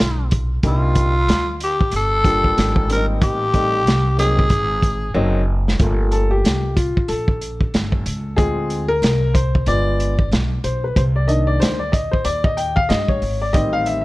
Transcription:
Already playing: F4
0.00 B1, snare
0.31 kick, closed hi-hat
0.63 C2 G3 A#3 D4 D#4, kick, closed hi-hat
0.67 F4
0.95 kick, closed hi-hat
1.28 D2, snare, closed hi-hat
1.60 G4, closed hi-hat
1.81 kick
1.91 G1, closed hi-hat
1.96 A4
2.24 G3 A#3 D4 F4, kick, closed hi-hat
2.44 kick
2.58 G#1, snare, closed hi-hat
2.76 kick
2.88 G3 A#3 C4 D4 A#4, closed hi-hat
2.97 D#4
3.21 A1 G4, kick, closed hi-hat
3.53 G3 A3 C4 D#4, kick, closed hi-hat
3.86 C2, snare, closed hi-hat
4.18 F#3 A#3 C4 D#4 G#4, closed hi-hat
4.39 kick
4.50 G#1, kick, closed hi-hat
4.83 kick, closed hi-hat
5.14 F#1 F#3 A#3 C4 D#4
5.68 snare
5.79 G1 A3 A#3 F4, kick, closed hi-hat
6.12 A4, closed hi-hat
6.31 G4
6.44 C2, snare, closed hi-hat
6.76 F4, kick, closed hi-hat
6.97 muted upright bass stroke, kick
7.08 A#1 A4, closed hi-hat
7.28 kick
7.41 closed hi-hat
7.61 kick
7.74 G1, snare, closed hi-hat
7.92 kick
8.06 C#2, closed hi-hat
8.36 D2 G#3 C4 F4 G#4, kick, closed hi-hat
8.70 closed hi-hat
8.88 A#4
9.02 C2, snare, closed hi-hat
9.34 C5, kick, closed hi-hat
9.55 kick
9.66 G1 G#3 B3 F4 D5, closed hi-hat
10.00 closed hi-hat
10.19 kick
10.32 B1, snare, closed hi-hat
10.64 B1 C5, closed hi-hat
10.84 B4
10.96 C2 C5, kick, closed hi-hat
11.16 D5
11.27 D#3 A#3 D4 D#5, closed hi-hat
11.47 D5
11.60 D2 C5, snare, closed hi-hat
11.79 D5
11.92 D#5, kick, closed hi-hat
12.11 C5, muted upright bass stroke, kick
12.25 D#2 D5, closed hi-hat
12.44 D#5, kick
12.57 G5, closed hi-hat
12.76 F5, kick
12.89 G2 D#5, snare, closed hi-hat
13.08 C#5, kick
13.22 G#1, open hi-hat
13.42 D5
13.53 A1 D#3 G3 C4 D#5, kick, closed hi-hat
13.73 F5
13.86 E5, closed hi-hat
14.01 E5

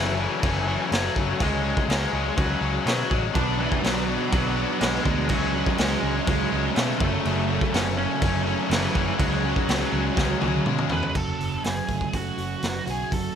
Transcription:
Already playing: F#1 F#2 C#3 E3 F#3 A3 C#4 E4 F#4 C#5 A5 C#6
0.19 E3 F#3 A3 C#4 E4
0.43 F#1 C#3 F#3 A3 C#4, kick, crash
0.68 F#2 C#3 F#3 A3 C#4
0.92 F#1 C#3 F#3 A3 C#4 F#4, snare, crash
1.16 F#1 F#3 A3 C#4, kick
1.40 C#2 C#3 F#3 G#3 C#4 F#4 G#4 G#5, kick, crash
1.64 F#3 G#3 C#4
1.77 kick
1.88 C#2 C#3 F#3 G#3 C#4 G#4, snare, crash
2.13 C#2 F#3 G#3 C#4
2.37 C#2 C#3 F#3 G#3 C#4 F#4, kick, crash
2.61 C#2 C#3 F#3 G#3 C#4
2.85 B2 C#3 F#3 G#3 C#4 F#4, snare, crash
3.10 A1 F#3 G#3 C#4, kick
3.34 B1 B2 F#3 B3 D4 F#4 D5 B5 D6, kick, crash
3.58 E3 F#3 B3 D4 E4
3.72 kick
3.83 B1 B2 F#3 B3 D4 F#4, snare, crash
4.07 F#3 B3 D4
4.31 B1 B2 F#3 B3 D4 F#4, kick, crash
4.56 B2 F#3 B3 D4
4.80 B1 B2 F#3 G#3 B3 D4 G#4, snare, crash
5.04 D2 F#3 G#3 B3 D4 G#4, kick
5.29 C#2 C#3 F#3 G#3 C#4 F#4 C#5 G#5 C#6, kick, crash
5.55 F#3 G#3 C#4
5.66 kick
5.78 C#2 C#3 F#3 G#3 C#4 G#4, snare, crash
6.03 C#2 F#3 G#3 C#4
6.27 C#2 C#3 F#3 G#3 C#4 G#4, kick, crash
6.52 C#2 C#3 F#3 G#3 C#4
6.75 B2 C#3 F#3 G#3 A3 C#4 A4, snare, crash
6.98 F#1 A3 C#4 A4 A5 C#6, kick
7.02 F#2 C#3 F#3 A3
7.25 F#1 F#2 C#3 F#3 A3 C#4, crash
7.49 F#3 A3 C#4
7.61 kick
7.73 F#1 F#2 C#3 F#3 A3 C#4 C#5, snare, crash
7.97 F#3 A3 C#4 C#5
8.22 F#1 C#3 F#3 A3 C#4, kick, crash
8.46 F#2 C#3 F#3 A3 C#4
8.69 F#1 C#3 E3 F#3 A3 C#4 E4, snare, crash
8.94 F#1 F#3 A3 C#4, kick
9.19 C#2 C#3 F#3 G#3 C#4 F#4 G#5, kick, crash
9.44 F#3 G#3 C#4
9.56 kick
9.68 C#2 C#3 F#3 G#3 C#4, snare, crash
9.91 C#2 F#3 G#3 C#4
10.16 C#2 C#3 F#3 G#3 C#4, kick, snare
10.40 C#2 C#3 F#3 G#3 C#4, high tom
10.66 B2 C#3 F#3 G#3 C#4, mid tom
10.78 mid tom
10.89 E2 F#3 G#3 C#4 B4, floor tom
11.03 floor tom
11.15 F#1 F#2 C#3 F#3 A4, kick, crash
11.40 F#1, open hi-hat
11.64 F#1 F#2 C#3 F#3 G#4, snare, open hi-hat
11.88 F#1 F#2 C#3 F#3 A3, kick, open hi-hat
12.01 kick
12.13 F#1 F#2 C#3 F#3 C#4 F#4, kick, open hi-hat
12.38 F#1 F#4, open hi-hat
12.62 F#1 F#2 C#3 F#3 A3, snare, open hi-hat
12.87 B1 F#2 C#3 F#3 F#4 G#4, open hi-hat
13.11 F#1 F#2 C#3 F#3 A4, kick, open hi-hat

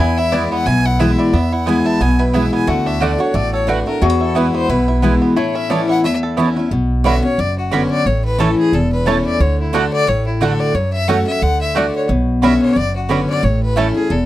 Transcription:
Already playing: E4
0.00 E2 B3 E4 G#5
0.18 E4 E5
0.32 E3 G#3 B3 E4 B4 D5 G#5
0.52 B3 F#5
0.66 B1 B2 E3 G#5
0.85 E4 F#5
0.99 E3 G#3 B3 E4 B4 E5 G#5
1.18 E4 D5
1.33 E2 B3 E5
1.52 E4 F#5
1.66 E3 G#3 B3 E4 B4 G#5
1.86 E4 A5
2.00 B1 B2 B3 G#5
2.19 E4 B4
2.33 E3 G#3 B3 E4 B4 E5 G#5
2.53 B3 G#5
2.67 D2 D3 A3 F#4 F#5
2.86 D4 E5
3.00 D3 A3 D4 F#4 D5 F#5
3.18 D4 F#4 C#5
3.34 A1 A2 A3 D5
3.53 A4 C#5
3.67 D3 A3 D4 F#4 B4 D5 F#5
3.86 A3 D4 F#4 A#4
4.02 E2 A3 F#4 G#4
4.10 B3
4.21 E4 A4
4.35 E3 G#3 B3 E4 B4 G#5
4.55 B3 C5
4.69 B1 B2 E4 B4
4.88 E4
5.02 E3 G#3 B3 E4 B4 G#5
5.22 B3
5.36 A2 A3 E4 C#5
5.55 C#4 E5
5.70 E3 A3 B3 C#4 E4 C#5 D5 A5
5.89 E4 F#5
6.04 E2 A3 E5
6.23 A4
6.37 E3 B3 C#4 E4 C#5 A5
6.56 A3 C#4 E4
6.71 B1 B2
7.04 D3 B3 C#4 F#4 D5 E5 B5
7.23 C#4 F#4 C#5
7.38 F#1 F#2 D5
7.58 F#4
7.71 D3 B3 C#4 F#4 B4 D5 B5
7.90 D5
8.06 A1 A2 C#5
8.25 B4
8.38 E3 A3 C#4 E4 A4 C#5 A5
8.58 G#4
8.72 E1 E2 A4
8.92 B4
9.06 E3 A3 C#4 E4 C#5 A5
9.26 D5
9.40 D2 D3 C#5
9.61 E4
9.73 D3 A3 D4 F#4 A4 D5 F#5
9.93 D5
10.07 A1 A2 C#5
10.27 E4
10.41 D3 A3 D4 F#4 A4 D5 F#5
10.60 D5
10.74 F#2 C#5
10.93 E5
11.08 F#3 A3 C#4 F#4 C#5 F#5
11.27 C#4 F#4 E5
11.42 D2 D3 F#5
11.61 E5
11.75 D3 A3 D4 F#4 D5 F#5
11.96 C#5
12.09 B1 B2
12.42 D3 B3 C#4 F#4 D5 E5 B5
12.62 C#5
12.76 F#1 F#2 D5
12.96 F#4
13.09 D3 B3 C#4 F#4 B4 D5 B5
13.30 D5
13.43 A1 A2 C#5
13.63 B4
13.76 E3 A3 C#4 E4 A4 C#5 A5
13.94 C#4 E4 G#4
14.10 E1 E2 A4

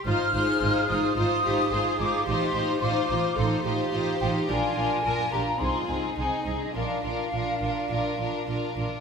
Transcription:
0.06 G#1 D#4 F4 C5 F6
0.33 G#1 D#4 F4 G#4 C5
0.61 G#1 D#4 F4 C5
0.88 G#1 D#4 F4 C5 D#6
1.15 G#1 D#4 F4 C5 D#6
1.43 G#1 D#4 F4 G4 C5
1.70 G#1 D#4 F4 G#4 C5
1.98 G#1 D#4 F4 C5 D6
2.26 A1 D#4 F4 G4 C5 C6
2.54 A1 D#4 F4 C5
2.80 A1 D#4 F4 C5 D6
3.08 A1 D#4 F4 C5
3.37 A1 D#4 F4 A4 C5 C6
3.65 A1 D#4 F4 G4 C5
3.92 A1 D#4 F4 C5 F5
4.20 A1 D#4 F4 C5 G5
4.48 A#1 D4 F4 A#4 G#5
4.76 A#1 D4 F4 A#4
5.04 A#1 D4 F4 A#4
5.31 A#1 D4 F4 G4 A#4 A#5
5.59 C2 C4 D#4 F4 G#4 C6
5.87 C2 C4 D#4 G#4 G#5
6.16 C2 C4 D#4 G#4 G#5
6.45 C2 C4 D#4 G#4 D#5
6.74 A#1 D4 F4 A#4 F5
7.03 A#1 D4 F4 A#4
7.33 A#1 D4 F4 A#4
7.61 A#1 D4 F4 A#4
7.91 A#1 D4 F4 A#4
8.19 A#1 D4 F4 A#4
8.48 A#1 D4 F4 A#4
8.76 A#1 D4 F4 A#4

